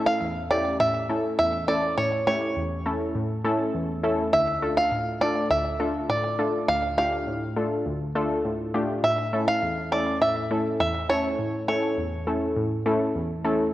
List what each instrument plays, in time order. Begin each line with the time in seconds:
Already playing: synth pluck A3 C#4 E4 A4
0.06 five-string banjo F5
0.21 synth pluck E2
0.50 synth pluck A3 C#4 E4 G4, five-string banjo D5
0.80 synth pluck A2, five-string banjo E5
1.09 synth pluck A3 C#4 E4 A4
1.39 synth pluck E2, five-string banjo E5
1.68 synth pluck A3 C#4 E4 A4, five-string banjo D5
1.98 synth pluck A2, five-string banjo C#5
2.27 synth pluck A3 C#4 E4 G4, five-string banjo C#5
2.56 synth pluck E2
2.86 synth pluck A3 C#4 E4 A4
3.15 synth pluck A2
3.45 synth pluck A3 C#4 E4 A4
3.74 synth pluck E2
4.04 synth pluck A3 C#4 E4 A4
4.33 synth pluck D2, five-string banjo E5
4.62 synth pluck A3 D4 F4 A4
4.77 five-string banjo F5
4.92 synth pluck A2
5.21 synth pluck A3 D4 F4 A4, five-string banjo D5
5.51 synth pluck D2, five-string banjo E5
5.80 synth pluck A3 D4 F4 A4
6.09 synth pluck A2, five-string banjo D5
6.39 synth pluck A3 D4 F4 A4
6.68 synth pluck D2, five-string banjo F5
6.98 synth pluck A3 D4 F4 G4, five-string banjo F5
7.27 synth pluck A2
7.56 synth pluck A3 D4 F4 A4
7.86 synth pluck D2
8.15 synth pluck A3 D4 F4 A4
8.45 synth pluck A2
8.74 synth pluck A3 D4 F4 G4
9.04 synth pluck A2, five-string banjo E5
9.33 synth pluck A3 C#4 E4 A4
9.48 five-string banjo F5
9.62 synth pluck E2
9.92 synth pluck A3 C#4 E4 A4, five-string banjo D5
10.21 synth pluck A2, five-string banjo E5
10.51 synth pluck A3 C#4 E4 A4
10.80 synth pluck E2, five-string banjo E5
11.09 synth pluck A3 C#4 E4 A4, five-string banjo C#5
11.39 synth pluck A2
11.68 synth pluck A3 C#4 E4 A4, five-string banjo C#5
11.98 synth pluck E2
12.27 synth pluck A3 C#4 E4 A4
12.56 synth pluck A2
12.86 synth pluck A3 C#4 E4 A4
13.15 synth pluck E2
13.45 synth pluck A3 C#4 E4 A4